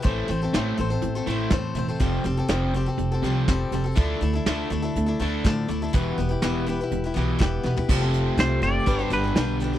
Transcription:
<<
  \new Staff \with { instrumentName = "Clean electric guitar" } { \time 4/4 \key f \lydian \tempo 4 = 122 r1 | r1 | r1 | r1 |
r4 c''8 d''4 b'4 r8 | }
  \new Staff \with { instrumentName = "Steel-string acoustic guitar" } { \time 4/4 \key f \lydian <a, e a c' a' c''>8 <a c' a' c''>16 <a c' a' c''>16 <a, e a c' a' c''>8 <a c' a' c''>16 <a c' a' c''>8 <a c' a' c''>16 <a c' a' c''>8 <a, e a c' a' c''>8 <a c' a' c''>16 <a c' a' c''>16 | <f g c' g' a'>8 <g c' g' a'>16 <c' g' a'>16 <f g c' g' a'>8 <g c' g' a'>16 <c' g' a'>8 <c' g' a'>16 <g c' g' a'>8 <f g c' g' a'>8 <g c' g' a'>16 <c' g' a'>16 | <d f a d' e' a'>8 <a d' e' a'>16 <a d' e' a'>16 <d f a d' e' a'>8 <a d' e' a'>16 <a d' e' a'>8 <a d' e' a'>16 <a d' e' a'>8 <d f a d' e' a'>8 <a d' e' a'>16 <a d' e' a'>16 | <e b e' g' b'>8 <b e' g' b'>16 <e' g' b'>16 <e b e' g' b'>8 <b e' g' b'>16 <e' g' b'>8 <e' g' b'>16 <b e' g' b'>8 <e b e' g' b'>8 <b e' g' b'>16 <e' g' b'>16 |
<f g c' g' a'>16 <c' g' a'>8. <f g c' g' a'>8 <g c' g' a'>8 <g d' g' b'>16 <d' g' b'>16 <g d' g' b'>16 <d' g' b'>16 <g d' g' b'>8 <g d' g' b'>16 <g' b'>16 | }
  \new Staff \with { instrumentName = "Overdriven electric guitar" } { \clef bass \time 4/4 \key f \lydian <a, e a>8 <a, e>8 <a, e a>8 <a, e>8 <a, e>8 <a, e a>8 <a, e>8 <a, e>8 | <f, c f>8 <f, c>8 <f, c f>8 <f, c>8 <f, c>8 <f, c f>8 <f, c>8 <f, c>8 | <d a d'>8 <d a>8 <d a d'>8 <d a>8 <d a>8 <d a d'>8 <d a>8 <d a>8 | <e, b, e>8 <e, b,>8 <e, b, e>8 <e, b,>8 <e, b,>8 <e, b, e>8 <e, b,>8 <e, b,>8 |
<f, c f a c' f'>2 <g, d g b d' g'>2 | }
  \new Staff \with { instrumentName = "Upright bass" } { \clef bass \time 4/4 \key f \lydian a,,8 a,,8 a,,8 a,,8 a,,8 a,,8 e,8 e,,8 | f,,8 f,,8 f,,4 f,,8 c,8 f,,8 f,,8 | d,8 d,8 d,8 d,8 d,8 d,8 a,8 d,8 | e,,8 e,,8 e,,4 e,,8 b,,8 e,,8 e,,8 |
f,,4 c,8 fis,,8 g,,8 g,,8 b,,4 | }
  \new DrumStaff \with { instrumentName = "Drums" } \drummode { \time 4/4 <hh bd>8 hh8 <hh sn>8 hh8 hh8 hh8 <hh bd sn>8 hh8 | <hh bd>8 hh8 <hh sn>8 hh8 hh8 hh8 <hh bd sn>8 hh8 | <hh bd>8 hh8 <hh sn>8 hh8 hh8 hh8 <hh bd sn>8 hh8 | <hh bd>8 hh8 <hh sn>8 hh8 hh8 hh8 <hh bd sn>8 sn16 tomfh16 |
<cymc bd>8 hh8 <hh sn>8 hh8 <hh bd>8 hh8 <hh sn>8 hh8 | }
>>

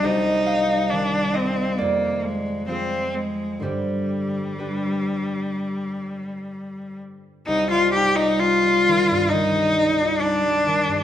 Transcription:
<<
  \new Staff \with { instrumentName = "Cello" } { \time 4/4 \key c \minor \tempo 4 = 66 ees'4 d'8 c'8 bes8 aes8 c'8 aes8 | g2.~ g8 r8 | ees'16 f'16 g'16 ees'16 f'4 ees'4 d'4 | }
  \new Staff \with { instrumentName = "Harp" } { \time 4/4 \key c \minor << { ees''8 f''4 ees''8 d''4 c''4 | c''4 b'2. | r1 | } \\ { <g' c''>2. <f' aes'>4 | g'4 <d' g'>2.~ | <d' g'>1 | } >> }
  \new Staff \with { instrumentName = "Harp" } { \clef bass \time 4/4 \key c \minor <c, g>4 <ees g c'>4 f,4 <f aes c'>4 | <g, d g>1 | c,16 g16 ees'16 f'16 ees'16 g16 ees16 g,16 ees16 g16 ees'16 f'16 ees'16 g16 ees16 g,16 | }
>>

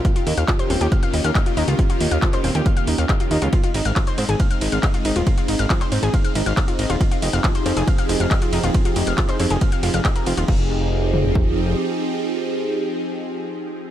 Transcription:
<<
  \new Staff \with { instrumentName = "Synth arpeggio sound" } { \time 4/4 \key f \minor \tempo 4 = 138 f'16 f'16 ees'16 f''16 f16 c''16 c'16 g'16 f''16 f''16 ees'16 f''16 f''16 f'16 ees'16 f'16 | f'16 f'16 ees'16 f''16 f16 c''16 c'16 g'16 f''16 f''16 ees'16 f''16 f''16 f'16 ees'16 f'16 | f'16 f'16 ees'16 f''16 f16 c''16 c'16 aes'16 f''16 f''16 ees'16 f''16 f''16 f'16 ees'16 f'16 | f'16 f'16 ees'16 f''16 f16 c''16 c'16 aes'16 f''16 f''16 ees'16 f''16 f''16 f'16 ees'16 f'16 |
f'16 f'16 ees'16 f''16 f16 c''16 c'16 aes'16 f''16 f''16 ees'16 f''16 f''16 f'16 ees'16 f'16 | f'16 f'16 ees'16 f''16 f16 c''16 c'16 aes'16 f''16 f''16 f'16 f''16 g'16 bes'16 f'16 f'16 | f'8 r2. r8 | r1 | }
  \new Staff \with { instrumentName = "Supersaw synth" } { \time 4/4 \key f \minor <ees bes des' f' g'>1~ | <ees bes des' f' g'>1 | <aes c' ees'>1~ | <aes c' ees'>1 |
<f g' aes'>1~ | <f g' aes'>1 | <f c' ees' g' aes'>1~ | <f c' ees' g' aes'>1 | }
  \new Staff \with { instrumentName = "Analog synth bass" } { \clef bass \time 4/4 \key f \minor r8 ees,16 ees,16 r8 ees,,16 ees,16 r8 ees,16 ees,16 r8 ees,16 des,16 | r8 ees,16 ees,16 r8 ees,,16 ees,16 r8 ees,16 ees,16 r8 ees,16 des,16 | r8 aes,,16 aes,,16 r8 aes,16 aes,,16 r8 aes,,16 aes,,16 r8 aes,,16 ees,,16 | r8 aes,,16 aes,,16 r8 aes,16 aes,,16 r8 aes,,16 aes,,16 r8 aes,,16 ees,,16 |
r8 f,,16 f,,16 r8 f,16 f,,16 r8 f,,16 f,,16 r8 f,,16 ees,,16 | r8 f,,16 f,,16 r8 f,16 f,,16 r8 f,,16 f,,16 r8 f,,16 ees,,16 | f,,2. r4 | r1 | }
  \new DrumStaff \with { instrumentName = "Drums" } \drummode { \time 4/4 <hh bd>16 hh16 hho16 hh16 <hc hh bd>16 hh16 hho16 hh16 <hh bd>16 hh16 hho16 hh16 <hc hh bd>16 hh16 hho16 hh16 | <hh bd>16 hh16 hho16 hh16 <hc hh bd>16 <hc hh>16 hho16 hh16 <hh bd>16 hh16 hho16 hh16 <hc hh bd>16 hh16 hho16 hh16 | <hh bd cymr>16 hh16 <hho cymr>16 hh16 <hc hh bd cymr>16 hh16 <hho cymr>16 hh16 <hh bd cymr>16 hh16 <hho cymr>16 hh16 <hc hh bd cymr>16 hh16 <hho cymr>16 hh16 | <hh bd cymr>16 hh16 <hho cymr>16 hh16 <hc hh bd cymr>16 <hc hh>16 <hho cymr>16 hh16 <hh bd cymr>16 hh16 <hho cymr>16 hh16 <hc hh bd cymr>16 hh16 <hho cymr>16 hh16 |
<hh bd cymr>16 hh16 <hho cymr>16 hh16 <hc hh bd cymr>16 hh16 <hho cymr>16 hh16 <hh bd cymr>16 hh16 <hho cymr>16 hh16 <hc hh bd cymr>16 hh16 <hho cymr>16 hh16 | <hh bd cymr>16 hh16 <hho cymr>16 hh16 <hc hh bd cymr>16 <hc hh>16 <hho cymr>16 hh16 <hh bd cymr>16 hh16 <hho cymr>16 hh16 <hc hh bd cymr>16 hh16 <hho cymr>16 hh16 | <cymc bd>4 r8 toml16 tomfh16 bd4 r4 | r4 r4 r4 r4 | }
>>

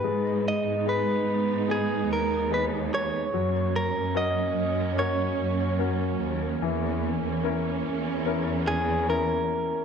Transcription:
<<
  \new Staff \with { instrumentName = "Clean electric guitar" } { \time 4/4 \key gis \minor \tempo 4 = 73 b'8 dis''8 b'4 gis'8 ais'8 b'8 cis''8~ | cis''8 ais'8 dis''4 cis''4. r8 | r2 r8 gis'8 ais'4 | }
  \new Staff \with { instrumentName = "Grand piano" } { \time 4/4 \key gis \minor gis4 <dis' gis' b'>4 <b dis' gis'>4 <dis' gis' b'>4 | fis4 <cis' fis' ais'>4 <cis' fis' ais'>4 <cis' fis' ais'>4 | e4 <cis' e' ais'>4 <cis' e' ais'>4 <cis' e' ais'>4 | }
  \new Staff \with { instrumentName = "String section" } { \time 4/4 \key gis \minor << { <gis dis'>1 | <fis cis'>1 | <e cis'>1 | } \\ { b1 | ais1~ | ais1 | } >> }
  \new Staff \with { instrumentName = "Cello section" } { \clef bass \time 4/4 \key gis \minor gis,8. gis,8. gis,4 dis,4. | fis,8. fis,8. fis,4 fis,4 dis,8 | e,8. e,8. e,2~ e,8 | }
>>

